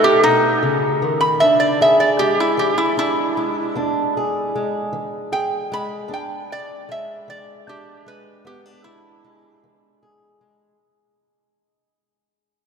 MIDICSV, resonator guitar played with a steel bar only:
0, 0, Header, 1, 2, 480
1, 0, Start_track
1, 0, Tempo, 781861
1, 872, Time_signature, 12, 3, 24, 8
1, 7773, End_track
2, 0, Start_track
2, 0, Title_t, "Resonator guitar played with a steel bar"
2, 0, Program_c, 0, 25
2, 25, Note_on_c, 0, 67, 108
2, 144, Note_on_c, 0, 63, 108
2, 145, Note_off_c, 0, 67, 0
2, 381, Note_off_c, 0, 63, 0
2, 740, Note_on_c, 0, 83, 90
2, 861, Note_on_c, 0, 76, 96
2, 862, Note_off_c, 0, 83, 0
2, 978, Note_off_c, 0, 76, 0
2, 981, Note_on_c, 0, 74, 90
2, 1103, Note_off_c, 0, 74, 0
2, 1117, Note_on_c, 0, 76, 91
2, 1225, Note_off_c, 0, 76, 0
2, 1228, Note_on_c, 0, 74, 82
2, 1345, Note_on_c, 0, 67, 95
2, 1346, Note_off_c, 0, 74, 0
2, 1465, Note_off_c, 0, 67, 0
2, 1475, Note_on_c, 0, 64, 93
2, 1590, Note_off_c, 0, 64, 0
2, 1592, Note_on_c, 0, 67, 88
2, 1705, Note_on_c, 0, 64, 99
2, 1708, Note_off_c, 0, 67, 0
2, 1825, Note_off_c, 0, 64, 0
2, 1834, Note_on_c, 0, 64, 104
2, 2299, Note_off_c, 0, 64, 0
2, 3270, Note_on_c, 0, 79, 101
2, 3504, Note_off_c, 0, 79, 0
2, 3521, Note_on_c, 0, 83, 98
2, 3750, Note_off_c, 0, 83, 0
2, 3767, Note_on_c, 0, 79, 92
2, 3993, Note_off_c, 0, 79, 0
2, 4005, Note_on_c, 0, 74, 93
2, 4232, Note_off_c, 0, 74, 0
2, 4245, Note_on_c, 0, 76, 88
2, 4472, Note_off_c, 0, 76, 0
2, 4480, Note_on_c, 0, 74, 86
2, 4710, Note_off_c, 0, 74, 0
2, 4723, Note_on_c, 0, 67, 80
2, 4951, Note_off_c, 0, 67, 0
2, 4959, Note_on_c, 0, 71, 87
2, 5190, Note_off_c, 0, 71, 0
2, 5198, Note_on_c, 0, 67, 90
2, 5428, Note_on_c, 0, 64, 94
2, 5429, Note_off_c, 0, 67, 0
2, 5897, Note_off_c, 0, 64, 0
2, 7773, End_track
0, 0, End_of_file